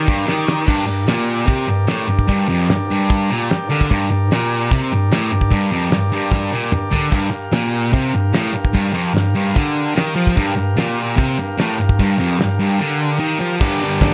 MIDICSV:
0, 0, Header, 1, 4, 480
1, 0, Start_track
1, 0, Key_signature, -2, "minor"
1, 0, Tempo, 403769
1, 804, Time_signature, 4, 2, 24, 8
1, 16808, End_track
2, 0, Start_track
2, 0, Title_t, "Transistor combo organ"
2, 0, Program_c, 0, 18
2, 0, Note_on_c, 0, 67, 74
2, 0, Note_on_c, 0, 70, 59
2, 0, Note_on_c, 0, 74, 74
2, 755, Note_off_c, 0, 70, 0
2, 755, Note_off_c, 0, 74, 0
2, 758, Note_off_c, 0, 67, 0
2, 821, Note_on_c, 0, 74, 73
2, 823, Note_on_c, 0, 70, 57
2, 827, Note_on_c, 0, 67, 63
2, 3923, Note_on_c, 0, 82, 66
2, 3992, Note_off_c, 0, 82, 0
2, 4001, Note_on_c, 0, 81, 67
2, 4145, Note_off_c, 0, 81, 0
2, 4155, Note_on_c, 0, 79, 63
2, 4376, Note_off_c, 0, 79, 0
2, 4410, Note_on_c, 0, 77, 68
2, 4591, Note_off_c, 0, 74, 0
2, 4593, Note_off_c, 0, 70, 0
2, 4595, Note_off_c, 0, 67, 0
2, 4624, Note_off_c, 0, 77, 0
2, 4628, Note_on_c, 0, 67, 59
2, 4628, Note_on_c, 0, 70, 65
2, 4631, Note_on_c, 0, 74, 73
2, 8421, Note_off_c, 0, 67, 0
2, 8421, Note_off_c, 0, 70, 0
2, 8423, Note_off_c, 0, 74, 0
2, 8456, Note_on_c, 0, 67, 60
2, 8459, Note_on_c, 0, 70, 59
2, 8459, Note_on_c, 0, 77, 67
2, 12269, Note_off_c, 0, 67, 0
2, 12271, Note_off_c, 0, 70, 0
2, 12271, Note_off_c, 0, 77, 0
2, 12311, Note_on_c, 0, 67, 61
2, 12316, Note_on_c, 0, 70, 62
2, 12316, Note_on_c, 0, 77, 76
2, 16121, Note_off_c, 0, 67, 0
2, 16124, Note_off_c, 0, 70, 0
2, 16124, Note_off_c, 0, 77, 0
2, 16176, Note_on_c, 0, 67, 67
2, 16177, Note_on_c, 0, 70, 62
2, 16178, Note_on_c, 0, 74, 75
2, 16808, Note_off_c, 0, 67, 0
2, 16808, Note_off_c, 0, 70, 0
2, 16808, Note_off_c, 0, 74, 0
2, 16808, End_track
3, 0, Start_track
3, 0, Title_t, "Distorted electric guitar"
3, 0, Program_c, 1, 30
3, 84, Note_on_c, 1, 43, 102
3, 313, Note_on_c, 1, 51, 99
3, 317, Note_off_c, 1, 43, 0
3, 790, Note_off_c, 1, 51, 0
3, 793, Note_on_c, 1, 43, 100
3, 1016, Note_off_c, 1, 43, 0
3, 1031, Note_on_c, 1, 43, 66
3, 1228, Note_off_c, 1, 43, 0
3, 1275, Note_on_c, 1, 46, 100
3, 1741, Note_off_c, 1, 46, 0
3, 1745, Note_on_c, 1, 48, 93
3, 1984, Note_off_c, 1, 48, 0
3, 1984, Note_on_c, 1, 43, 67
3, 2183, Note_off_c, 1, 43, 0
3, 2228, Note_on_c, 1, 45, 93
3, 2464, Note_off_c, 1, 45, 0
3, 2473, Note_on_c, 1, 43, 87
3, 2666, Note_off_c, 1, 43, 0
3, 2710, Note_on_c, 1, 43, 94
3, 2945, Note_off_c, 1, 43, 0
3, 2956, Note_on_c, 1, 41, 91
3, 3188, Note_off_c, 1, 41, 0
3, 3212, Note_on_c, 1, 43, 65
3, 3394, Note_off_c, 1, 43, 0
3, 3451, Note_on_c, 1, 43, 86
3, 3914, Note_off_c, 1, 43, 0
3, 3932, Note_on_c, 1, 46, 98
3, 4154, Note_off_c, 1, 46, 0
3, 4176, Note_on_c, 1, 43, 68
3, 4356, Note_off_c, 1, 43, 0
3, 4405, Note_on_c, 1, 50, 127
3, 4630, Note_off_c, 1, 50, 0
3, 4650, Note_on_c, 1, 43, 115
3, 4873, Note_off_c, 1, 43, 0
3, 4892, Note_on_c, 1, 43, 75
3, 5072, Note_off_c, 1, 43, 0
3, 5134, Note_on_c, 1, 46, 98
3, 5594, Note_off_c, 1, 46, 0
3, 5616, Note_on_c, 1, 48, 100
3, 5835, Note_off_c, 1, 48, 0
3, 5852, Note_on_c, 1, 43, 70
3, 6032, Note_off_c, 1, 43, 0
3, 6082, Note_on_c, 1, 45, 110
3, 6308, Note_off_c, 1, 45, 0
3, 6318, Note_on_c, 1, 43, 86
3, 6505, Note_off_c, 1, 43, 0
3, 6544, Note_on_c, 1, 43, 99
3, 6779, Note_off_c, 1, 43, 0
3, 6800, Note_on_c, 1, 41, 104
3, 7027, Note_off_c, 1, 41, 0
3, 7033, Note_on_c, 1, 43, 62
3, 7223, Note_off_c, 1, 43, 0
3, 7278, Note_on_c, 1, 43, 94
3, 7745, Note_on_c, 1, 46, 95
3, 7747, Note_off_c, 1, 43, 0
3, 7980, Note_off_c, 1, 46, 0
3, 7993, Note_on_c, 1, 43, 68
3, 8184, Note_off_c, 1, 43, 0
3, 8221, Note_on_c, 1, 50, 114
3, 8452, Note_on_c, 1, 43, 112
3, 8458, Note_off_c, 1, 50, 0
3, 8677, Note_off_c, 1, 43, 0
3, 8692, Note_on_c, 1, 43, 66
3, 8894, Note_off_c, 1, 43, 0
3, 8942, Note_on_c, 1, 46, 97
3, 9421, Note_off_c, 1, 46, 0
3, 9426, Note_on_c, 1, 48, 101
3, 9663, Note_off_c, 1, 48, 0
3, 9671, Note_on_c, 1, 43, 72
3, 9865, Note_off_c, 1, 43, 0
3, 9910, Note_on_c, 1, 45, 97
3, 10144, Note_on_c, 1, 43, 78
3, 10145, Note_off_c, 1, 45, 0
3, 10342, Note_off_c, 1, 43, 0
3, 10388, Note_on_c, 1, 43, 110
3, 10613, Note_off_c, 1, 43, 0
3, 10618, Note_on_c, 1, 41, 105
3, 10861, Note_off_c, 1, 41, 0
3, 10871, Note_on_c, 1, 43, 67
3, 11067, Note_off_c, 1, 43, 0
3, 11120, Note_on_c, 1, 43, 100
3, 11349, Note_on_c, 1, 50, 96
3, 11353, Note_off_c, 1, 43, 0
3, 11829, Note_off_c, 1, 50, 0
3, 11840, Note_on_c, 1, 51, 100
3, 12073, Note_off_c, 1, 51, 0
3, 12078, Note_on_c, 1, 53, 127
3, 12314, Note_off_c, 1, 53, 0
3, 12317, Note_on_c, 1, 43, 107
3, 12546, Note_off_c, 1, 43, 0
3, 12560, Note_on_c, 1, 43, 66
3, 12755, Note_off_c, 1, 43, 0
3, 12802, Note_on_c, 1, 46, 94
3, 13271, Note_off_c, 1, 46, 0
3, 13275, Note_on_c, 1, 48, 99
3, 13516, Note_off_c, 1, 48, 0
3, 13532, Note_on_c, 1, 43, 66
3, 13724, Note_off_c, 1, 43, 0
3, 13769, Note_on_c, 1, 45, 112
3, 14004, Note_off_c, 1, 45, 0
3, 14013, Note_on_c, 1, 43, 94
3, 14205, Note_off_c, 1, 43, 0
3, 14259, Note_on_c, 1, 43, 104
3, 14485, Note_off_c, 1, 43, 0
3, 14490, Note_on_c, 1, 41, 87
3, 14725, Note_off_c, 1, 41, 0
3, 14740, Note_on_c, 1, 43, 71
3, 14929, Note_off_c, 1, 43, 0
3, 14974, Note_on_c, 1, 43, 96
3, 15208, Note_off_c, 1, 43, 0
3, 15215, Note_on_c, 1, 50, 102
3, 15682, Note_off_c, 1, 50, 0
3, 15687, Note_on_c, 1, 51, 101
3, 15924, Note_off_c, 1, 51, 0
3, 15929, Note_on_c, 1, 53, 114
3, 16161, Note_on_c, 1, 43, 85
3, 16165, Note_off_c, 1, 53, 0
3, 16179, Note_on_c, 1, 50, 109
3, 16200, Note_on_c, 1, 55, 111
3, 16411, Note_off_c, 1, 55, 0
3, 16415, Note_on_c, 1, 55, 78
3, 16444, Note_off_c, 1, 50, 0
3, 16458, Note_on_c, 1, 50, 63
3, 16652, Note_off_c, 1, 43, 0
3, 16656, Note_on_c, 1, 43, 85
3, 16671, Note_off_c, 1, 50, 0
3, 16685, Note_on_c, 1, 50, 94
3, 16691, Note_off_c, 1, 55, 0
3, 16696, Note_on_c, 1, 55, 100
3, 16808, Note_off_c, 1, 43, 0
3, 16808, Note_off_c, 1, 50, 0
3, 16808, Note_off_c, 1, 55, 0
3, 16808, End_track
4, 0, Start_track
4, 0, Title_t, "Drums"
4, 81, Note_on_c, 9, 82, 98
4, 96, Note_on_c, 9, 36, 108
4, 200, Note_off_c, 9, 82, 0
4, 215, Note_off_c, 9, 36, 0
4, 215, Note_on_c, 9, 82, 28
4, 324, Note_off_c, 9, 82, 0
4, 324, Note_on_c, 9, 82, 73
4, 337, Note_on_c, 9, 38, 87
4, 443, Note_off_c, 9, 82, 0
4, 456, Note_off_c, 9, 38, 0
4, 571, Note_on_c, 9, 82, 91
4, 576, Note_on_c, 9, 38, 97
4, 689, Note_off_c, 9, 82, 0
4, 694, Note_off_c, 9, 38, 0
4, 696, Note_on_c, 9, 82, 26
4, 805, Note_on_c, 9, 49, 112
4, 807, Note_on_c, 9, 36, 110
4, 815, Note_off_c, 9, 82, 0
4, 924, Note_off_c, 9, 49, 0
4, 926, Note_off_c, 9, 36, 0
4, 1277, Note_on_c, 9, 46, 54
4, 1285, Note_on_c, 9, 38, 100
4, 1396, Note_off_c, 9, 46, 0
4, 1403, Note_off_c, 9, 38, 0
4, 1752, Note_on_c, 9, 46, 60
4, 1759, Note_on_c, 9, 36, 123
4, 1871, Note_off_c, 9, 46, 0
4, 1878, Note_off_c, 9, 36, 0
4, 2232, Note_on_c, 9, 46, 53
4, 2239, Note_on_c, 9, 38, 107
4, 2350, Note_off_c, 9, 46, 0
4, 2358, Note_off_c, 9, 38, 0
4, 2599, Note_on_c, 9, 36, 77
4, 2718, Note_off_c, 9, 36, 0
4, 2718, Note_on_c, 9, 46, 59
4, 2721, Note_on_c, 9, 36, 96
4, 2837, Note_off_c, 9, 46, 0
4, 2840, Note_off_c, 9, 36, 0
4, 3203, Note_on_c, 9, 46, 55
4, 3210, Note_on_c, 9, 38, 112
4, 3322, Note_off_c, 9, 46, 0
4, 3329, Note_off_c, 9, 38, 0
4, 3683, Note_on_c, 9, 46, 59
4, 3686, Note_on_c, 9, 36, 111
4, 3801, Note_off_c, 9, 46, 0
4, 3805, Note_off_c, 9, 36, 0
4, 4169, Note_on_c, 9, 46, 57
4, 4176, Note_on_c, 9, 38, 103
4, 4288, Note_off_c, 9, 46, 0
4, 4295, Note_off_c, 9, 38, 0
4, 4529, Note_on_c, 9, 36, 74
4, 4646, Note_on_c, 9, 46, 53
4, 4648, Note_off_c, 9, 36, 0
4, 4649, Note_on_c, 9, 36, 100
4, 4765, Note_off_c, 9, 46, 0
4, 4768, Note_off_c, 9, 36, 0
4, 5129, Note_on_c, 9, 46, 51
4, 5136, Note_on_c, 9, 38, 105
4, 5248, Note_off_c, 9, 46, 0
4, 5255, Note_off_c, 9, 38, 0
4, 5601, Note_on_c, 9, 46, 63
4, 5604, Note_on_c, 9, 36, 110
4, 5720, Note_off_c, 9, 46, 0
4, 5723, Note_off_c, 9, 36, 0
4, 6086, Note_on_c, 9, 46, 54
4, 6093, Note_on_c, 9, 38, 103
4, 6205, Note_off_c, 9, 46, 0
4, 6212, Note_off_c, 9, 38, 0
4, 6435, Note_on_c, 9, 36, 83
4, 6554, Note_off_c, 9, 36, 0
4, 6557, Note_on_c, 9, 36, 95
4, 6563, Note_on_c, 9, 46, 62
4, 6676, Note_off_c, 9, 36, 0
4, 6682, Note_off_c, 9, 46, 0
4, 7033, Note_on_c, 9, 46, 55
4, 7040, Note_on_c, 9, 38, 112
4, 7152, Note_off_c, 9, 46, 0
4, 7159, Note_off_c, 9, 38, 0
4, 7508, Note_on_c, 9, 36, 120
4, 7522, Note_on_c, 9, 38, 69
4, 7627, Note_off_c, 9, 36, 0
4, 7641, Note_off_c, 9, 38, 0
4, 7991, Note_on_c, 9, 45, 81
4, 8109, Note_off_c, 9, 45, 0
4, 8236, Note_on_c, 9, 43, 92
4, 8355, Note_off_c, 9, 43, 0
4, 8464, Note_on_c, 9, 82, 76
4, 8465, Note_on_c, 9, 46, 58
4, 8465, Note_on_c, 9, 55, 82
4, 8466, Note_on_c, 9, 36, 105
4, 8583, Note_off_c, 9, 82, 0
4, 8584, Note_off_c, 9, 46, 0
4, 8584, Note_off_c, 9, 55, 0
4, 8585, Note_off_c, 9, 36, 0
4, 8708, Note_on_c, 9, 82, 98
4, 8824, Note_off_c, 9, 82, 0
4, 8824, Note_on_c, 9, 82, 29
4, 8943, Note_off_c, 9, 82, 0
4, 8944, Note_on_c, 9, 46, 54
4, 8945, Note_on_c, 9, 82, 78
4, 8951, Note_on_c, 9, 38, 105
4, 9062, Note_off_c, 9, 46, 0
4, 9064, Note_off_c, 9, 82, 0
4, 9070, Note_off_c, 9, 38, 0
4, 9180, Note_on_c, 9, 82, 100
4, 9299, Note_off_c, 9, 82, 0
4, 9423, Note_on_c, 9, 82, 79
4, 9433, Note_on_c, 9, 36, 115
4, 9436, Note_on_c, 9, 46, 54
4, 9542, Note_off_c, 9, 82, 0
4, 9552, Note_off_c, 9, 36, 0
4, 9555, Note_off_c, 9, 46, 0
4, 9668, Note_on_c, 9, 82, 105
4, 9787, Note_off_c, 9, 82, 0
4, 9913, Note_on_c, 9, 46, 51
4, 9916, Note_on_c, 9, 82, 70
4, 9920, Note_on_c, 9, 38, 106
4, 10032, Note_off_c, 9, 46, 0
4, 10035, Note_off_c, 9, 82, 0
4, 10039, Note_off_c, 9, 38, 0
4, 10152, Note_on_c, 9, 82, 99
4, 10271, Note_off_c, 9, 82, 0
4, 10278, Note_on_c, 9, 36, 92
4, 10397, Note_off_c, 9, 36, 0
4, 10398, Note_on_c, 9, 82, 79
4, 10399, Note_on_c, 9, 36, 101
4, 10400, Note_on_c, 9, 46, 68
4, 10517, Note_off_c, 9, 82, 0
4, 10518, Note_off_c, 9, 36, 0
4, 10518, Note_off_c, 9, 46, 0
4, 10634, Note_on_c, 9, 82, 97
4, 10753, Note_off_c, 9, 82, 0
4, 10759, Note_on_c, 9, 82, 30
4, 10872, Note_off_c, 9, 82, 0
4, 10872, Note_on_c, 9, 82, 78
4, 10890, Note_on_c, 9, 46, 58
4, 10897, Note_on_c, 9, 38, 113
4, 10991, Note_off_c, 9, 82, 0
4, 11009, Note_off_c, 9, 46, 0
4, 11016, Note_off_c, 9, 38, 0
4, 11122, Note_on_c, 9, 82, 88
4, 11241, Note_off_c, 9, 82, 0
4, 11358, Note_on_c, 9, 82, 85
4, 11367, Note_on_c, 9, 36, 108
4, 11371, Note_on_c, 9, 46, 61
4, 11477, Note_off_c, 9, 82, 0
4, 11486, Note_off_c, 9, 36, 0
4, 11490, Note_off_c, 9, 46, 0
4, 11594, Note_on_c, 9, 82, 103
4, 11713, Note_off_c, 9, 82, 0
4, 11849, Note_on_c, 9, 82, 66
4, 11852, Note_on_c, 9, 46, 49
4, 11859, Note_on_c, 9, 38, 109
4, 11968, Note_off_c, 9, 82, 0
4, 11971, Note_off_c, 9, 46, 0
4, 11978, Note_off_c, 9, 38, 0
4, 12083, Note_on_c, 9, 82, 110
4, 12202, Note_off_c, 9, 82, 0
4, 12209, Note_on_c, 9, 36, 83
4, 12328, Note_off_c, 9, 36, 0
4, 12329, Note_on_c, 9, 82, 81
4, 12330, Note_on_c, 9, 36, 108
4, 12339, Note_on_c, 9, 46, 54
4, 12448, Note_off_c, 9, 82, 0
4, 12449, Note_off_c, 9, 36, 0
4, 12458, Note_off_c, 9, 46, 0
4, 12570, Note_on_c, 9, 82, 95
4, 12689, Note_off_c, 9, 82, 0
4, 12701, Note_on_c, 9, 82, 28
4, 12809, Note_off_c, 9, 82, 0
4, 12809, Note_on_c, 9, 82, 81
4, 12813, Note_on_c, 9, 46, 52
4, 12820, Note_on_c, 9, 38, 113
4, 12927, Note_off_c, 9, 82, 0
4, 12932, Note_off_c, 9, 46, 0
4, 12939, Note_off_c, 9, 38, 0
4, 13049, Note_on_c, 9, 82, 110
4, 13168, Note_off_c, 9, 82, 0
4, 13293, Note_on_c, 9, 36, 112
4, 13293, Note_on_c, 9, 46, 56
4, 13294, Note_on_c, 9, 82, 88
4, 13412, Note_off_c, 9, 36, 0
4, 13412, Note_off_c, 9, 46, 0
4, 13413, Note_off_c, 9, 82, 0
4, 13535, Note_on_c, 9, 82, 111
4, 13653, Note_off_c, 9, 82, 0
4, 13779, Note_on_c, 9, 46, 50
4, 13781, Note_on_c, 9, 82, 77
4, 13786, Note_on_c, 9, 38, 102
4, 13898, Note_off_c, 9, 46, 0
4, 13900, Note_off_c, 9, 82, 0
4, 13905, Note_off_c, 9, 38, 0
4, 14024, Note_on_c, 9, 82, 100
4, 14138, Note_on_c, 9, 36, 87
4, 14142, Note_off_c, 9, 82, 0
4, 14257, Note_off_c, 9, 36, 0
4, 14259, Note_on_c, 9, 82, 80
4, 14260, Note_on_c, 9, 36, 91
4, 14264, Note_on_c, 9, 46, 61
4, 14378, Note_off_c, 9, 36, 0
4, 14378, Note_off_c, 9, 82, 0
4, 14383, Note_off_c, 9, 46, 0
4, 14505, Note_on_c, 9, 82, 100
4, 14624, Note_off_c, 9, 82, 0
4, 14737, Note_on_c, 9, 82, 82
4, 14742, Note_on_c, 9, 46, 57
4, 14749, Note_on_c, 9, 38, 99
4, 14856, Note_off_c, 9, 82, 0
4, 14861, Note_off_c, 9, 46, 0
4, 14868, Note_off_c, 9, 38, 0
4, 14969, Note_on_c, 9, 82, 89
4, 15088, Note_off_c, 9, 82, 0
4, 16169, Note_on_c, 9, 82, 106
4, 16178, Note_on_c, 9, 49, 127
4, 16178, Note_on_c, 9, 57, 64
4, 16179, Note_on_c, 9, 36, 127
4, 16288, Note_off_c, 9, 82, 0
4, 16297, Note_off_c, 9, 49, 0
4, 16297, Note_off_c, 9, 57, 0
4, 16298, Note_off_c, 9, 36, 0
4, 16412, Note_on_c, 9, 82, 86
4, 16531, Note_off_c, 9, 82, 0
4, 16655, Note_on_c, 9, 82, 114
4, 16658, Note_on_c, 9, 36, 116
4, 16660, Note_on_c, 9, 57, 67
4, 16668, Note_on_c, 9, 38, 102
4, 16774, Note_off_c, 9, 82, 0
4, 16777, Note_off_c, 9, 36, 0
4, 16779, Note_off_c, 9, 57, 0
4, 16786, Note_off_c, 9, 38, 0
4, 16808, End_track
0, 0, End_of_file